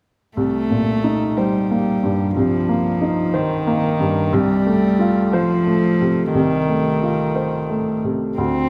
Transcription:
0, 0, Header, 1, 3, 480
1, 0, Start_track
1, 0, Tempo, 661521
1, 266, Time_signature, 6, 3, 24, 8
1, 3621, Tempo, 675676
1, 6249, End_track
2, 0, Start_track
2, 0, Title_t, "Upright piano"
2, 0, Program_c, 0, 0
2, 268, Note_on_c, 0, 36, 39
2, 408, Control_c, 0, 64, 127
2, 511, Note_on_c, 0, 46, 30
2, 755, Note_on_c, 0, 63, 32
2, 898, Note_off_c, 0, 46, 0
2, 998, Note_on_c, 0, 72, 30
2, 1140, Note_off_c, 0, 63, 0
2, 1240, Note_on_c, 0, 58, 28
2, 1380, Note_off_c, 0, 72, 0
2, 1476, Note_on_c, 0, 43, 33
2, 1620, Note_off_c, 0, 58, 0
2, 1684, Note_off_c, 0, 36, 0
2, 1713, Note_on_c, 0, 36, 39
2, 1727, Control_c, 0, 64, 0
2, 1848, Control_c, 0, 64, 127
2, 1856, Note_off_c, 0, 43, 0
2, 1950, Note_on_c, 0, 58, 32
2, 2187, Note_on_c, 0, 63, 34
2, 2333, Note_off_c, 0, 58, 0
2, 2422, Note_on_c, 0, 72, 38
2, 2571, Note_off_c, 0, 63, 0
2, 2664, Note_on_c, 0, 58, 37
2, 2807, Note_off_c, 0, 72, 0
2, 2901, Note_on_c, 0, 43, 39
2, 3046, Note_off_c, 0, 58, 0
2, 3114, Note_off_c, 0, 36, 0
2, 3138, Note_on_c, 0, 36, 55
2, 3140, Note_off_c, 0, 43, 0
2, 3155, Control_c, 0, 64, 0
2, 3253, Control_c, 0, 64, 127
2, 3384, Note_on_c, 0, 57, 41
2, 3622, Note_on_c, 0, 65, 40
2, 3766, Note_off_c, 0, 57, 0
2, 3864, Note_on_c, 0, 72, 46
2, 4002, Note_off_c, 0, 65, 0
2, 4102, Note_on_c, 0, 57, 36
2, 4244, Note_off_c, 0, 72, 0
2, 4346, Note_on_c, 0, 48, 36
2, 4484, Note_off_c, 0, 57, 0
2, 4547, Note_off_c, 0, 36, 0
2, 4583, Note_on_c, 0, 36, 43
2, 4592, Control_c, 0, 64, 0
2, 4718, Control_c, 0, 64, 127
2, 4726, Note_off_c, 0, 48, 0
2, 4820, Note_on_c, 0, 57, 32
2, 5066, Note_on_c, 0, 65, 31
2, 5206, Note_off_c, 0, 57, 0
2, 5302, Note_on_c, 0, 72, 32
2, 5450, Note_off_c, 0, 65, 0
2, 5544, Note_on_c, 0, 57, 28
2, 5689, Note_off_c, 0, 72, 0
2, 5789, Note_on_c, 0, 48, 28
2, 5930, Note_off_c, 0, 57, 0
2, 6000, Note_off_c, 0, 36, 0
2, 6027, Note_off_c, 0, 48, 0
2, 6028, Note_on_c, 0, 38, 43
2, 6039, Control_c, 0, 64, 0
2, 6141, Control_c, 0, 64, 127
2, 6249, Note_off_c, 0, 38, 0
2, 6249, End_track
3, 0, Start_track
3, 0, Title_t, "Cello"
3, 0, Program_c, 1, 42
3, 269, Note_on_c, 1, 57, 64
3, 996, Note_on_c, 1, 55, 47
3, 1007, Note_off_c, 1, 57, 0
3, 1711, Note_off_c, 1, 55, 0
3, 1715, Note_on_c, 1, 53, 53
3, 2429, Note_on_c, 1, 51, 59
3, 2439, Note_off_c, 1, 53, 0
3, 3146, Note_on_c, 1, 55, 76
3, 3157, Note_off_c, 1, 51, 0
3, 3862, Note_on_c, 1, 53, 64
3, 3873, Note_off_c, 1, 55, 0
3, 4579, Note_off_c, 1, 53, 0
3, 4582, Note_on_c, 1, 51, 62
3, 5764, Note_off_c, 1, 51, 0
3, 6030, Note_on_c, 1, 60, 67
3, 6249, Note_off_c, 1, 60, 0
3, 6249, End_track
0, 0, End_of_file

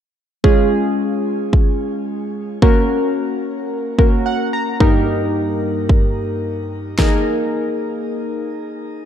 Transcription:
0, 0, Header, 1, 3, 480
1, 0, Start_track
1, 0, Tempo, 545455
1, 388, Time_signature, 4, 2, 24, 8
1, 7966, End_track
2, 0, Start_track
2, 0, Title_t, "Synth keys"
2, 0, Program_c, 0, 88
2, 386, Note_on_c, 0, 68, 76
2, 387, Note_on_c, 0, 56, 69
2, 387, Note_on_c, 0, 61, 65
2, 387, Note_on_c, 0, 65, 63
2, 2272, Note_off_c, 0, 56, 0
2, 2272, Note_off_c, 0, 61, 0
2, 2272, Note_off_c, 0, 65, 0
2, 2272, Note_off_c, 0, 68, 0
2, 2308, Note_on_c, 0, 66, 65
2, 2308, Note_on_c, 0, 70, 77
2, 2309, Note_on_c, 0, 58, 70
2, 2309, Note_on_c, 0, 61, 63
2, 3484, Note_off_c, 0, 58, 0
2, 3484, Note_off_c, 0, 61, 0
2, 3484, Note_off_c, 0, 66, 0
2, 3484, Note_off_c, 0, 70, 0
2, 3507, Note_on_c, 0, 58, 52
2, 3507, Note_on_c, 0, 66, 48
2, 3507, Note_on_c, 0, 70, 58
2, 3508, Note_on_c, 0, 61, 47
2, 3747, Note_on_c, 0, 78, 67
2, 3970, Note_off_c, 0, 78, 0
2, 3988, Note_on_c, 0, 82, 64
2, 4211, Note_off_c, 0, 82, 0
2, 4216, Note_off_c, 0, 58, 0
2, 4217, Note_off_c, 0, 70, 0
2, 4226, Note_on_c, 0, 58, 62
2, 4227, Note_on_c, 0, 43, 70
2, 4227, Note_on_c, 0, 63, 67
2, 4227, Note_on_c, 0, 67, 64
2, 4227, Note_on_c, 0, 70, 77
2, 4228, Note_off_c, 0, 61, 0
2, 4228, Note_off_c, 0, 66, 0
2, 6112, Note_off_c, 0, 43, 0
2, 6112, Note_off_c, 0, 58, 0
2, 6112, Note_off_c, 0, 63, 0
2, 6112, Note_off_c, 0, 67, 0
2, 6112, Note_off_c, 0, 70, 0
2, 6146, Note_on_c, 0, 63, 67
2, 6147, Note_on_c, 0, 58, 73
2, 6147, Note_on_c, 0, 68, 66
2, 6148, Note_on_c, 0, 70, 81
2, 7966, Note_off_c, 0, 58, 0
2, 7966, Note_off_c, 0, 63, 0
2, 7966, Note_off_c, 0, 68, 0
2, 7966, Note_off_c, 0, 70, 0
2, 7966, End_track
3, 0, Start_track
3, 0, Title_t, "Drums"
3, 388, Note_on_c, 9, 36, 100
3, 476, Note_off_c, 9, 36, 0
3, 1347, Note_on_c, 9, 36, 77
3, 1435, Note_off_c, 9, 36, 0
3, 2308, Note_on_c, 9, 36, 103
3, 2396, Note_off_c, 9, 36, 0
3, 3507, Note_on_c, 9, 36, 79
3, 3595, Note_off_c, 9, 36, 0
3, 4228, Note_on_c, 9, 36, 101
3, 4316, Note_off_c, 9, 36, 0
3, 5187, Note_on_c, 9, 36, 81
3, 5275, Note_off_c, 9, 36, 0
3, 6148, Note_on_c, 9, 36, 100
3, 6148, Note_on_c, 9, 38, 84
3, 6236, Note_off_c, 9, 36, 0
3, 6236, Note_off_c, 9, 38, 0
3, 7966, End_track
0, 0, End_of_file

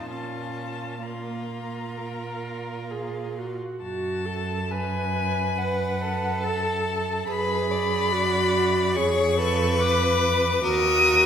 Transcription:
0, 0, Header, 1, 5, 480
1, 0, Start_track
1, 0, Key_signature, -5, "minor"
1, 0, Tempo, 938967
1, 49, Time_signature, 4, 2, 24, 8
1, 1489, Tempo, 894188
1, 1977, Key_signature, 3, "minor"
1, 2449, Tempo, 868307
1, 3409, Tempo, 842697
1, 6155, End_track
2, 0, Start_track
2, 0, Title_t, "Violin"
2, 0, Program_c, 0, 40
2, 50, Note_on_c, 0, 81, 51
2, 525, Note_on_c, 0, 82, 39
2, 532, Note_off_c, 0, 81, 0
2, 1736, Note_off_c, 0, 82, 0
2, 1977, Note_on_c, 0, 81, 71
2, 2454, Note_on_c, 0, 80, 83
2, 2462, Note_off_c, 0, 81, 0
2, 2934, Note_on_c, 0, 78, 81
2, 2942, Note_off_c, 0, 80, 0
2, 3401, Note_off_c, 0, 78, 0
2, 3404, Note_on_c, 0, 81, 79
2, 3880, Note_off_c, 0, 81, 0
2, 3888, Note_on_c, 0, 83, 109
2, 4824, Note_off_c, 0, 83, 0
2, 4845, Note_on_c, 0, 85, 109
2, 5328, Note_on_c, 0, 86, 107
2, 5336, Note_off_c, 0, 85, 0
2, 5800, Note_on_c, 0, 87, 127
2, 5808, Note_off_c, 0, 86, 0
2, 6155, Note_off_c, 0, 87, 0
2, 6155, End_track
3, 0, Start_track
3, 0, Title_t, "Violin"
3, 0, Program_c, 1, 40
3, 52, Note_on_c, 1, 65, 33
3, 515, Note_off_c, 1, 65, 0
3, 524, Note_on_c, 1, 65, 36
3, 1844, Note_off_c, 1, 65, 0
3, 2929, Note_on_c, 1, 71, 63
3, 3173, Note_on_c, 1, 69, 67
3, 3182, Note_off_c, 1, 71, 0
3, 3894, Note_off_c, 1, 69, 0
3, 3896, Note_on_c, 1, 71, 75
3, 4133, Note_on_c, 1, 74, 74
3, 4141, Note_off_c, 1, 71, 0
3, 4845, Note_on_c, 1, 73, 83
3, 4854, Note_off_c, 1, 74, 0
3, 5084, Note_off_c, 1, 73, 0
3, 5087, Note_on_c, 1, 71, 100
3, 5794, Note_off_c, 1, 71, 0
3, 5800, Note_on_c, 1, 70, 93
3, 6155, Note_off_c, 1, 70, 0
3, 6155, End_track
4, 0, Start_track
4, 0, Title_t, "Viola"
4, 0, Program_c, 2, 41
4, 53, Note_on_c, 2, 61, 32
4, 516, Note_off_c, 2, 61, 0
4, 524, Note_on_c, 2, 58, 42
4, 1009, Note_on_c, 2, 70, 42
4, 1017, Note_off_c, 2, 58, 0
4, 1487, Note_on_c, 2, 68, 37
4, 1495, Note_off_c, 2, 70, 0
4, 1738, Note_on_c, 2, 66, 37
4, 1746, Note_off_c, 2, 68, 0
4, 1971, Note_off_c, 2, 66, 0
4, 1974, Note_on_c, 2, 66, 57
4, 2211, Note_on_c, 2, 69, 59
4, 2219, Note_off_c, 2, 66, 0
4, 2451, Note_on_c, 2, 71, 62
4, 2459, Note_off_c, 2, 69, 0
4, 3408, Note_on_c, 2, 69, 62
4, 3417, Note_off_c, 2, 71, 0
4, 3890, Note_off_c, 2, 69, 0
4, 3893, Note_on_c, 2, 68, 66
4, 4369, Note_on_c, 2, 66, 77
4, 4378, Note_off_c, 2, 68, 0
4, 4844, Note_on_c, 2, 68, 77
4, 4852, Note_off_c, 2, 66, 0
4, 5084, Note_on_c, 2, 69, 87
4, 5093, Note_off_c, 2, 68, 0
4, 5319, Note_off_c, 2, 69, 0
4, 5323, Note_on_c, 2, 71, 78
4, 5796, Note_off_c, 2, 71, 0
4, 5802, Note_on_c, 2, 66, 102
4, 6155, Note_off_c, 2, 66, 0
4, 6155, End_track
5, 0, Start_track
5, 0, Title_t, "Cello"
5, 0, Program_c, 3, 42
5, 49, Note_on_c, 3, 46, 35
5, 1844, Note_off_c, 3, 46, 0
5, 1980, Note_on_c, 3, 42, 60
5, 3871, Note_off_c, 3, 42, 0
5, 3895, Note_on_c, 3, 42, 72
5, 4847, Note_on_c, 3, 41, 83
5, 4855, Note_off_c, 3, 42, 0
5, 5802, Note_off_c, 3, 41, 0
5, 5806, Note_on_c, 3, 39, 93
5, 6155, Note_off_c, 3, 39, 0
5, 6155, End_track
0, 0, End_of_file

